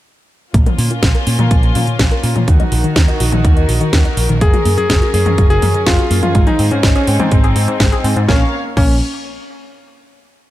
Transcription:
0.54 A#1 A#3 C#4 F4, kick, closed hi-hat
0.66 A#4, closed hi-hat, high tom
0.78 A#2 C#4, open hi-hat
0.91 A#2, closed hi-hat
1.03 A#1 A#3, kick, snare, closed hi-hat
1.15 A#4, closed hi-hat
1.27 A#2 C#4, open hi-hat
1.39 A#2, closed hi-hat, high tom
1.51 A#1 A#3, kick, closed hi-hat
1.63 A#4, closed hi-hat
1.75 A#2 C#4, open hi-hat, high tom
1.87 A#2, closed hi-hat
1.99 A#1 A#3, kick, snare, closed hi-hat
2.11 A#4, closed hi-hat
2.23 A#2 C#4, open hi-hat
2.36 A#2, closed hi-hat, high tom
2.48 D#2 D#3 D#4 F#4 A#4, kick, closed hi-hat
2.60 D#5, closed hi-hat, high tom
2.72 A#1 F#4, open hi-hat
2.84 D#3, closed hi-hat
2.96 D#2 D#4, kick, snare, closed hi-hat
3.08 D#5, closed hi-hat
3.20 A#1 F#4, open hi-hat
3.32 A#1 D#3, closed hi-hat, high tom
3.45 D#2 D#4, kick, closed hi-hat
3.57 D#5, closed hi-hat
3.69 A#1 F#4, open hi-hat
3.81 D#3, closed hi-hat
3.93 D#2 D#4, kick, snare, closed hi-hat
4.05 D#5, closed hi-hat
4.17 A#1 F#4, open hi-hat
4.29 A#1 D#3, closed hi-hat
4.41 F#1 F#3 C#4 G#4, kick, closed hi-hat
4.53 F#4, closed hi-hat, high tom
4.65 F#2 A#3, open hi-hat
4.78 F#2 G#4, closed hi-hat
4.90 F#1 F#3, kick, snare, closed hi-hat
5.02 F#4, closed hi-hat
5.14 F#2 A#3 G#4, open hi-hat
5.26 F#2, closed hi-hat, high tom
5.38 F#1 F#3, kick, closed hi-hat
5.50 F#4 G#4, closed hi-hat
5.62 F#2 A#3, open hi-hat, high tom
5.74 F#2, closed hi-hat
5.87 F#1 F#3 F4, kick, snare, closed hi-hat
5.99 F#4, closed hi-hat
6.11 F#2 A#3, open hi-hat
6.23 F#2 F4, closed hi-hat, high tom
6.35 G#1 G#3 C4 D#4, kick, closed hi-hat
6.47 D#4 G#4, closed hi-hat, high tom
6.59 G#2 C4, open hi-hat
6.71 G#2 C#4, closed hi-hat
6.83 G#1 G#3, kick, snare, closed hi-hat
6.95 C#4 G#4, closed hi-hat
7.07 G#2 C4, open hi-hat
7.20 G#2 C4, closed hi-hat, high tom
7.32 G#1 G#3, kick, closed hi-hat
7.44 G#4, closed hi-hat
7.56 G#2 C4, open hi-hat
7.68 G#2, closed hi-hat
7.80 G#1 G#3, kick, snare, closed hi-hat
7.92 G#4, closed hi-hat
8.04 G#2 C4, open hi-hat
8.16 G#2, closed hi-hat
8.28 A#1 A#3 C#4 A#4 C#5 F5, kick, snare
8.77 A#1 A#3 C#4, kick, crash

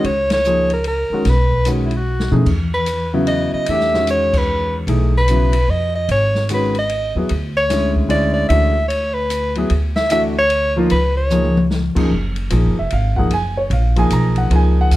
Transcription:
0.04 C#2 C#5, ride
0.30 C#5, snare, ride
0.44 F3 A#3 D#4 G#4, hi-hat pedal
0.70 A#4, ride
0.84 A#4, ride
1.10 D#3 G#3 C#4, muted upright bass stroke
1.14 F#4
1.25 B1, snare, ride
1.29 B4
1.51 kick
1.65 D#3 G#3 C#4 F#4, hi-hat pedal, ride
1.85 E4
1.91 ride
1.97 F#4
2.20 snare
2.31 F#2 B2 E3 A3 D#4 G#4, mid tom
2.46 E2, kick, crash
2.74 B4
2.86 hi-hat pedal, ride
3.13 C#3 F#3 B3 E4
3.27 D#5, ride
3.53 D#5, muted upright bass stroke
3.66 E2 E3 A3 D4, ride
3.70 G4 E5
3.80 snare
3.94 D#3 G#3 C#4 F#4, snare
4.07 C#5, hi-hat pedal, ride
4.33 kick, crash
4.38 B4
4.87 B1 E3 A3 D#4 G#4, ride
5.17 B4
5.28 C#3 F#3 B3 E4, hi-hat pedal, ride
5.53 ride
5.68 F2 D#5
5.95 D#5
6.09 G#1 C#5, ride
6.35 snare
6.49 D#3 G#3 C#4 F#4, hi-hat pedal, ride
6.54 B4
6.75 D#5, ride
6.89 ride
7.15 D#2 F#3 B3 E4 G#4
7.29 D2, ride
7.56 C#5
7.70 D3 G#3 C#4 E4, snare, hi-hat pedal, ride
7.96 kick
8.08 D3 G#3 C#4 E4 D5, ride
8.34 D5
8.49 D2 E3 A3 D4 F#4 E5, ride
8.88 C#5, ride
9.14 B4
9.30 hi-hat pedal, ride
9.55 F#3 B3 E4 G#4, ride
9.70 D2, ride
9.96 E5, snare
10.10 E3 A3 D4 F#4 E5, hi-hat pedal, ride
10.38 C#5
10.50 ride
10.76 F3 A#3 D#4 F4
10.90 C#2 B4, ride
11.17 C#5
11.30 F3 A#3 D#4 G#4, hi-hat pedal, mid tom
11.44 mid tom
11.57 mid tom
11.71 snare
11.95 F#2 F3 A#3 D#4 G#4, muted upright bass stroke, kick, crash
12.11 F#1
12.36 ride
12.50 A#1 F3 A#3 D#4 G#4, hi-hat pedal, ride
12.65 F#1
12.79 F1 E5
12.90 G#1 F5, ride
13.16 F3 A#3 D#4 G#4 F#5, kick
13.30 F#1 G#5, ride
13.57 C#5
13.70 A#1 F5, ride
13.96 F3 A#3 D#4 G#4 G#5, ride
14.10 B1 A#5, hi-hat pedal, ride
14.36 F#5, ride
14.50 C#2 F3 A#3 D#4 G#4, ride
14.55 G#5
14.81 F#5
14.91 D#2, hi-hat pedal, ride

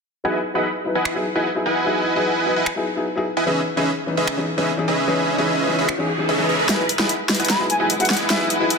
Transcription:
0.24 F#3 B3 D#4 E4 G#4 B4 D#5 F#5 G#5
0.54 F#3 B3 D#4 E4 G#4 B4 D#5 F#5 B5
0.84 F#3 B3 D#4 E4 B4
0.95 E4 B4 D#5 F#5 G#5
1.05 finger snap
1.14 F#3 B3 D#4 E4 G#4
1.35 F#3 B3 D#4 E4 G#4 B4 D#5 F#5 G#5
1.55 F#3 B3 D#4 E4 G#4
1.66 E4 B4 D#5 F#5 G#5
1.85 F#3 B3 D#4 E4 G#4
2.15 F#3 B3 D#4 E4 G#4 B4 D#5 F#5 G#5
2.45 F#3 B3 D#4 E4 B4
2.56 E4 B4 D#5 F#5 G#5
2.66 finger snap
2.75 F#3 B3 D#4 E4 G#4
2.95 F#3 B3 D#4 E4 G#4
3.16 F#3 B3 D#4 E4 G#4
3.37 E4 B4 D#5 F#5 G#5
3.46 E3 B3 C#4 D#4 G#4 B4 D#5 E5, riser
3.76 E3 B3 C#4 D#4 G#4 B4 D#5 E5
4.06 E3 B3 C#4 D#4 B4
4.17 C#4 G#4 B4 D#5 E5
4.27 finger snap
4.36 E3 B3 C#4 D#4 G#4
4.57 E3 B3 C#4 D#4 G#4 B4 D#5 E5
4.77 E3 B3 C#4 D#4 G#4
4.88 C#4 G#4 B4 D#5 E5
5.07 E3 B3 C#4 D#4 G#4
5.37 E3 B3 C#4 D#4 G#4 B4 D#5 E5
5.67 E3 B3 C#4 D#4 B4
5.78 C#4 G#4 B4 D#5 E5
5.89 finger snap
5.98 E3 B3 C#4 D#4 G#4
6.18 E3 B3 C#4 D#4 G#4
6.29 C#4 G#4 B4 D#5 E5
6.38 E3 B3 C#4 D#4 G#4
6.49 C#4 G#4 B4 D#5 E5
6.59 C#4 G#4 B4 D#5 E5
6.68 E1 F#3 G#3 B3 D#4 E4 G#4 B4 D#5 F#5 G#5, snare, closed hi-hat, riser
6.89 closed hi-hat
6.98 E1 F#3 B3 D#4 E4 G#4 B4 D#5 F#5 B5, snare
7.09 closed hi-hat
7.28 F#3 B3 D#4 E4 B4, snare, closed hi-hat
7.34 closed hi-hat
7.40 E1 E4 B4 D#5 F#5 G#5, closed hi-hat
7.45 closed hi-hat
7.50 B5, snare, closed hi-hat
7.59 F#3 B3 D#4 E4 G#4
7.70 G#5, closed hi-hat
7.79 E1 F#3 B3 D#4 E4 G#4 B4 D#5 F#5 G#5
7.90 closed hi-hat
7.99 F#3 B3 D#4 E4 G#4 F#5, closed hi-hat
8.05 closed hi-hat
8.10 E1 E4 B4 D#5 F#5 G#5, snare, closed hi-hat
8.13 closed hi-hat
8.17 closed hi-hat
8.29 F#3 B3 D#4 E4 G#4 E5, snare, closed hi-hat
8.50 closed hi-hat
8.59 E1 F#3 B3 D#4 E4 G#4 B4 D#5 F#5 G#5
8.70 closed hi-hat

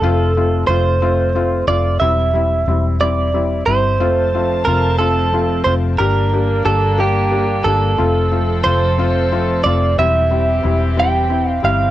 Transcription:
Already playing: A4
0.02 F1 A3 C4 F4
0.37 A3 C4 F4
0.67 F1 A3 C4 F4 C5
1.02 A3 C4 F4
1.35 A3 C4 F4
1.67 F1 A3 C4 F4 D5
2.00 E1 G3 C4 E4 E5
2.33 G3 C4 E4
2.67 E1 G3 C4 E4
3.00 G3 C4 E4 D5
3.34 G3 C4 E4
3.66 G1 G3 C4 E4 C5
4.00 F1 F3 A3 C4 F4 A5
4.34 A3 C4 F4
4.65 F1 A3 C4 F4 A#4
4.99 A3 C4 F4 A4
5.32 A3 C4 F4
5.64 F1 A3 C4 F4 C5
5.98 G1 G3 A#3 D4 G4 A#4
6.33 A#3 D4 G4
6.65 G1 A#3 D4 G4 A4
6.98 A#3 D4 G4
7.31 A#3 D4 G4
7.64 G1 A#3 D4 G4 A4
7.98 F1 F3 A3 C4 F4 A4
8.31 A3 C4 F4
8.64 F1 A3 C4 F4 C5
8.98 A3 C4 F4
9.32 A3 C4 F4
9.64 F1 A3 C4 F4 D5
9.98 E1 E3 G3 C4 E4 G4 E5
10.30 G3 C4 E4
10.63 E1 G3 C4 E4
10.97 G3 C4 E4 G5
11.29 C4 E4
11.51 F5
11.63 G1 G3 C4 E4 F5

